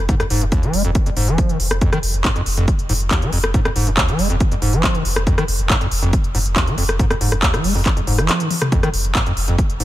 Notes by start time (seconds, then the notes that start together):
0.09 G#2, kick, closed hi-hat
0.20 F1 F2, cross-stick, closed hi-hat
0.30 F1 G#2, open hi-hat
0.41 F1 F2, closed hi-hat
0.52 D#2, kick, closed hi-hat
0.63 F1 F3, closed hi-hat
0.73 F1 G#3, open hi-hat
0.85 F1 F2, closed hi-hat
0.95 kick, closed hi-hat
1.06 F1 F2, closed hi-hat
1.17 F1 G#2, open hi-hat
1.28 F1 F3, closed hi-hat
1.38 kick, closed hi-hat
1.49 F1 D#3, closed hi-hat
1.60 F1, open hi-hat
1.71 F1, cross-stick, closed hi-hat
1.81 F2, kick, closed hi-hat
1.93 F1 D#3, cross-stick, closed hi-hat
2.03 F1, open hi-hat
2.14 F1, closed hi-hat
2.25 G#2, kick, clap, closed hi-hat
2.36 F1 F2, closed hi-hat
2.46 F1, open hi-hat
2.57 F1 F2, closed hi-hat
2.68 kick, closed hi-hat
2.79 F1, closed hi-hat
2.89 F1 G#2, open hi-hat
3.00 F1, closed hi-hat
3.11 D#2, kick, clap, closed hi-hat
3.22 F1 F3, closed hi-hat
3.33 F1 F2, open hi-hat
3.44 F1, cross-stick, closed hi-hat
3.54 G#2, kick, closed hi-hat
3.65 F1 F2, cross-stick, closed hi-hat
3.76 F1 G#2, open hi-hat
3.87 F1 F2, closed hi-hat
3.97 D#2, kick, clap, closed hi-hat
4.08 F1 F3, closed hi-hat
4.19 F1 G#3, open hi-hat
4.30 F1 F2, closed hi-hat
4.40 kick, closed hi-hat
4.51 F1 F2, closed hi-hat
4.62 F1 G#2, open hi-hat
4.73 F1 F3, closed hi-hat
4.84 kick, clap, closed hi-hat
4.95 F1 D#3, closed hi-hat
5.05 F1, open hi-hat
5.16 F1, cross-stick, closed hi-hat
5.27 F2, kick, closed hi-hat
5.38 F1 D#3, cross-stick, closed hi-hat
5.48 F1, open hi-hat
5.59 F1, closed hi-hat
5.70 G#2, kick, clap, closed hi-hat
5.81 F1 F2, closed hi-hat
5.91 F1, open hi-hat
6.03 F1 F2, closed hi-hat
6.13 kick, closed hi-hat
6.24 F1, closed hi-hat
6.35 F1 G#2, open hi-hat
6.46 F1, closed hi-hat
6.56 D#2, kick, clap, closed hi-hat
6.67 F1 F3, closed hi-hat
6.78 F1 F2, open hi-hat
6.89 F1, cross-stick, closed hi-hat
6.99 G#2, kick, closed hi-hat
7.10 F1 F2, cross-stick, closed hi-hat
7.21 F1 G#2, open hi-hat
7.32 F1 F2, cross-stick, closed hi-hat
7.43 D#2, kick, clap, closed hi-hat
7.54 F1 F3, cross-stick, closed hi-hat
7.64 F1 G#3, open hi-hat
7.75 F1 F2, open hi-hat
7.86 kick, clap, closed hi-hat
7.97 F1 F2, closed hi-hat
8.07 F1 G#2, open hi-hat
8.18 F1 F3, cross-stick, closed hi-hat
8.29 clap, closed hi-hat
8.40 D#3, closed hi-hat
8.51 open hi-hat, high tom
8.62 cross-stick, closed hi-hat, mid tom
8.72 F2, kick, closed hi-hat
8.83 F1 D#3, cross-stick, closed hi-hat
8.94 F1, open hi-hat
9.05 F1, closed hi-hat
9.15 G#2, kick, clap, closed hi-hat
9.26 F1 F2, closed hi-hat
9.37 F1, open hi-hat
9.48 F1 F2, closed hi-hat
9.58 kick, closed hi-hat
9.70 F1, closed hi-hat
9.80 F1 G#2, open hi-hat